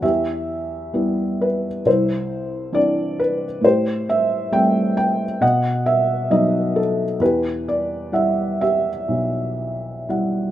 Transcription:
0, 0, Header, 1, 2, 480
1, 0, Start_track
1, 0, Key_signature, 1, "minor"
1, 0, Tempo, 911854
1, 15, Time_signature, 4, 2, 24, 8
1, 975, Tempo, 891530
1, 3855, Tempo, 934579
1, 4815, Tempo, 1011804
1, 5500, End_track
2, 0, Start_track
2, 0, Title_t, "Felt piano"
2, 0, Program_c, 0, 0
2, 0, Control_c, 0, 64, 127
2, 11, Note_on_c, 0, 40, 49
2, 13, Note_on_c, 0, 76, 65
2, 19, Note_on_c, 0, 67, 49
2, 22, Control_c, 0, 64, 0
2, 117, Control_c, 0, 64, 127
2, 492, Note_on_c, 0, 55, 37
2, 494, Note_on_c, 0, 59, 36
2, 498, Note_on_c, 0, 64, 45
2, 745, Note_on_c, 0, 71, 62
2, 760, Note_off_c, 0, 76, 0
2, 877, Note_off_c, 0, 55, 0
2, 878, Note_off_c, 0, 59, 0
2, 880, Note_off_c, 0, 64, 0
2, 953, Note_off_c, 0, 40, 0
2, 957, Note_off_c, 0, 67, 0
2, 975, Note_on_c, 0, 36, 51
2, 983, Control_c, 0, 64, 0
2, 983, Note_on_c, 0, 64, 47
2, 983, Note_on_c, 0, 72, 68
2, 986, Note_off_c, 0, 71, 0
2, 1090, Control_c, 0, 64, 127
2, 1444, Note_on_c, 0, 52, 41
2, 1445, Note_on_c, 0, 60, 36
2, 1447, Note_on_c, 0, 62, 45
2, 1456, Note_on_c, 0, 74, 79
2, 1471, Note_off_c, 0, 72, 0
2, 1698, Note_on_c, 0, 71, 71
2, 1700, Note_off_c, 0, 74, 0
2, 1832, Note_off_c, 0, 52, 0
2, 1833, Note_off_c, 0, 60, 0
2, 1834, Note_off_c, 0, 62, 0
2, 1911, Note_off_c, 0, 36, 0
2, 1915, Note_off_c, 0, 64, 0
2, 1922, Note_on_c, 0, 45, 53
2, 1939, Control_c, 0, 64, 0
2, 1940, Note_on_c, 0, 67, 54
2, 1940, Note_on_c, 0, 72, 78
2, 1944, Note_off_c, 0, 71, 0
2, 2043, Control_c, 0, 64, 127
2, 2162, Note_off_c, 0, 72, 0
2, 2182, Note_on_c, 0, 76, 77
2, 2412, Note_on_c, 0, 55, 41
2, 2412, Note_on_c, 0, 57, 40
2, 2413, Note_on_c, 0, 60, 49
2, 2415, Note_on_c, 0, 79, 81
2, 2427, Note_off_c, 0, 76, 0
2, 2646, Note_off_c, 0, 79, 0
2, 2654, Note_on_c, 0, 79, 81
2, 2797, Note_off_c, 0, 55, 0
2, 2797, Note_off_c, 0, 57, 0
2, 2798, Note_off_c, 0, 60, 0
2, 2869, Note_off_c, 0, 45, 0
2, 2877, Note_off_c, 0, 67, 0
2, 2890, Note_on_c, 0, 47, 55
2, 2894, Note_on_c, 0, 78, 77
2, 2896, Note_on_c, 0, 75, 61
2, 2902, Note_off_c, 0, 79, 0
2, 2904, Control_c, 0, 64, 0
2, 2992, Control_c, 0, 64, 127
2, 3117, Note_off_c, 0, 78, 0
2, 3134, Note_on_c, 0, 76, 77
2, 3357, Note_off_c, 0, 76, 0
2, 3368, Note_off_c, 0, 75, 0
2, 3372, Note_on_c, 0, 54, 40
2, 3375, Note_on_c, 0, 59, 38
2, 3376, Note_on_c, 0, 75, 77
2, 3378, Note_on_c, 0, 63, 45
2, 3617, Note_on_c, 0, 69, 63
2, 3623, Note_off_c, 0, 75, 0
2, 3759, Note_off_c, 0, 54, 0
2, 3761, Note_off_c, 0, 59, 0
2, 3762, Note_off_c, 0, 63, 0
2, 3832, Note_off_c, 0, 47, 0
2, 3853, Note_on_c, 0, 40, 54
2, 3862, Note_on_c, 0, 71, 68
2, 3864, Control_c, 0, 64, 0
2, 3865, Note_off_c, 0, 69, 0
2, 3869, Note_on_c, 0, 67, 49
2, 3960, Control_c, 0, 64, 127
2, 4077, Note_off_c, 0, 71, 0
2, 4103, Note_on_c, 0, 74, 64
2, 4318, Note_off_c, 0, 74, 0
2, 4327, Note_on_c, 0, 55, 37
2, 4330, Note_on_c, 0, 64, 37
2, 4333, Note_on_c, 0, 78, 41
2, 4337, Note_on_c, 0, 76, 64
2, 4572, Note_off_c, 0, 76, 0
2, 4576, Note_off_c, 0, 67, 0
2, 4580, Note_on_c, 0, 76, 74
2, 4583, Note_on_c, 0, 67, 47
2, 4718, Note_off_c, 0, 55, 0
2, 4720, Note_off_c, 0, 64, 0
2, 4722, Note_off_c, 0, 78, 0
2, 4821, Note_on_c, 0, 35, 46
2, 5280, Note_off_c, 0, 76, 0
2, 5298, Note_on_c, 0, 55, 35
2, 5298, Note_on_c, 0, 64, 33
2, 5304, Note_on_c, 0, 78, 36
2, 5500, Note_off_c, 0, 35, 0
2, 5500, Note_off_c, 0, 40, 0
2, 5500, Note_off_c, 0, 55, 0
2, 5500, Note_off_c, 0, 64, 0
2, 5500, Note_off_c, 0, 67, 0
2, 5500, Note_off_c, 0, 78, 0
2, 5500, End_track
0, 0, End_of_file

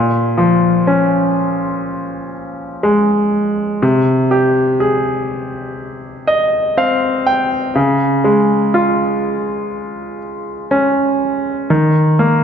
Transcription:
0, 0, Header, 1, 2, 480
1, 0, Start_track
1, 0, Tempo, 983607
1, 1867, Time_signature, 4, 2, 24, 8
1, 6070, End_track
2, 0, Start_track
2, 0, Title_t, "Grand piano"
2, 0, Program_c, 0, 0
2, 0, Note_on_c, 0, 46, 51
2, 34, Control_c, 0, 64, 127
2, 183, Note_on_c, 0, 53, 41
2, 426, Note_on_c, 0, 61, 42
2, 1125, Note_off_c, 0, 53, 0
2, 1367, Note_off_c, 0, 61, 0
2, 1382, Note_on_c, 0, 56, 44
2, 1849, Note_off_c, 0, 46, 0
2, 1850, Note_off_c, 0, 56, 0
2, 1866, Note_on_c, 0, 48, 55
2, 1873, Control_c, 0, 64, 0
2, 1945, Control_c, 0, 64, 127
2, 2103, Note_on_c, 0, 67, 41
2, 2344, Note_on_c, 0, 68, 43
2, 3046, Note_off_c, 0, 67, 0
2, 3062, Note_on_c, 0, 75, 57
2, 3286, Note_off_c, 0, 68, 0
2, 3287, Note_off_c, 0, 75, 0
2, 3306, Note_on_c, 0, 60, 46
2, 3308, Note_on_c, 0, 77, 54
2, 3530, Note_off_c, 0, 77, 0
2, 3545, Note_on_c, 0, 79, 55
2, 3767, Note_off_c, 0, 48, 0
2, 3769, Note_off_c, 0, 79, 0
2, 3772, Note_off_c, 0, 60, 0
2, 3784, Note_on_c, 0, 49, 54
2, 3794, Control_c, 0, 64, 0
2, 3880, Control_c, 0, 64, 127
2, 4023, Note_on_c, 0, 56, 42
2, 4266, Note_on_c, 0, 65, 45
2, 4965, Note_off_c, 0, 56, 0
2, 5207, Note_off_c, 0, 65, 0
2, 5227, Note_on_c, 0, 61, 44
2, 5686, Note_off_c, 0, 49, 0
2, 5692, Note_off_c, 0, 61, 0
2, 5710, Note_on_c, 0, 51, 54
2, 5712, Control_c, 0, 64, 0
2, 5798, Control_c, 0, 64, 127
2, 5950, Note_on_c, 0, 58, 41
2, 6070, Note_off_c, 0, 51, 0
2, 6070, Note_off_c, 0, 58, 0
2, 6070, End_track
0, 0, End_of_file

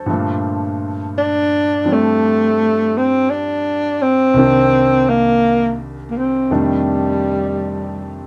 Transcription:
0, 0, Header, 1, 3, 480
1, 0, Start_track
1, 0, Key_signature, -2, "minor"
1, 0, Tempo, 1073345
1, 37, Time_signature, 4, 2, 24, 8
1, 3698, End_track
2, 0, Start_track
2, 0, Title_t, "Tenor saxophone"
2, 0, Program_c, 0, 66
2, 527, Note_on_c, 0, 62, 96
2, 861, Note_on_c, 0, 57, 80
2, 868, Note_off_c, 0, 62, 0
2, 1331, Note_on_c, 0, 60, 70
2, 1337, Note_off_c, 0, 57, 0
2, 1476, Note_on_c, 0, 62, 84
2, 1483, Note_off_c, 0, 60, 0
2, 1798, Note_on_c, 0, 60, 85
2, 1805, Note_off_c, 0, 62, 0
2, 2277, Note_on_c, 0, 58, 88
2, 2283, Note_off_c, 0, 60, 0
2, 2589, Note_off_c, 0, 58, 0
2, 2729, Note_on_c, 0, 58, 45
2, 2762, Note_on_c, 0, 60, 61
2, 2769, Note_off_c, 0, 58, 0
2, 2922, Note_on_c, 0, 55, 66
2, 2929, Note_off_c, 0, 60, 0
2, 3698, Note_off_c, 0, 55, 0
2, 3698, End_track
3, 0, Start_track
3, 0, Title_t, "Grand piano"
3, 0, Program_c, 1, 0
3, 0, Control_c, 1, 64, 127
3, 0, Note_on_c, 1, 60, 57
3, 0, Note_on_c, 1, 62, 38
3, 0, Note_on_c, 1, 69, 44
3, 0, Note_on_c, 1, 72, 43
3, 27, Note_on_c, 1, 43, 45
3, 32, Note_on_c, 1, 50, 36
3, 39, Note_on_c, 1, 53, 40
3, 43, Control_c, 1, 64, 0
3, 45, Note_on_c, 1, 57, 38
3, 46, Note_off_c, 1, 62, 0
3, 46, Note_off_c, 1, 69, 0
3, 49, Note_on_c, 1, 46, 48
3, 50, Note_off_c, 1, 60, 0
3, 109, Control_c, 1, 64, 127
3, 127, Note_off_c, 1, 72, 0
3, 817, Note_off_c, 1, 53, 0
3, 824, Note_on_c, 1, 53, 38
3, 829, Note_on_c, 1, 55, 38
3, 832, Note_on_c, 1, 62, 35
3, 839, Note_on_c, 1, 60, 44
3, 1941, Note_on_c, 1, 36, 47
3, 1942, Note_off_c, 1, 43, 0
3, 1942, Note_off_c, 1, 53, 0
3, 1944, Note_off_c, 1, 50, 0
3, 1945, Note_off_c, 1, 55, 0
3, 1946, Note_off_c, 1, 62, 0
3, 1946, Note_on_c, 1, 48, 41
3, 1950, Note_off_c, 1, 57, 0
3, 1950, Note_off_c, 1, 60, 0
3, 1951, Note_on_c, 1, 51, 45
3, 1952, Note_off_c, 1, 46, 0
3, 1952, Control_c, 1, 64, 0
3, 1955, Note_on_c, 1, 58, 44
3, 1963, Note_on_c, 1, 62, 51
3, 2023, Control_c, 1, 64, 127
3, 2903, Note_off_c, 1, 36, 0
3, 2903, Note_off_c, 1, 48, 0
3, 2905, Note_off_c, 1, 51, 0
3, 2908, Note_on_c, 1, 41, 43
3, 2909, Note_off_c, 1, 62, 0
3, 2910, Note_off_c, 1, 58, 0
3, 2910, Note_on_c, 1, 48, 41
3, 2912, Control_c, 1, 64, 0
3, 2912, Note_on_c, 1, 51, 38
3, 2912, Note_on_c, 1, 57, 42
3, 2913, Note_on_c, 1, 55, 39
3, 2916, Note_on_c, 1, 62, 47
3, 2992, Control_c, 1, 64, 127
3, 3698, Note_off_c, 1, 41, 0
3, 3698, Note_off_c, 1, 48, 0
3, 3698, Note_off_c, 1, 51, 0
3, 3698, Note_off_c, 1, 55, 0
3, 3698, Note_off_c, 1, 57, 0
3, 3698, Note_off_c, 1, 62, 0
3, 3698, End_track
0, 0, End_of_file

